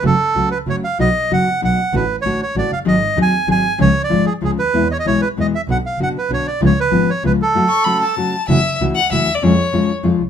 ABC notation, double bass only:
X:1
M:3/4
L:1/8
Q:1/4=192
K:F#m
V:1 name="Double bass" clef=bass
F,,, z C,, z F,,, z | B,,, z F,,, z B,,, z | A,,, z A,,, z A,,, F,,, | G,,, z ^D,, z G,,, z |
C,, z G,,, z C,, D,, | E,, z B,,, z E,, z | B,,, z F,,, z B,,, z | C,, z G,,, z C,, z |
z6 | [K:C#phr] F,,, z C,, z F,,, ^D,, | ^E,, z E,, z E,, ^B,,, |]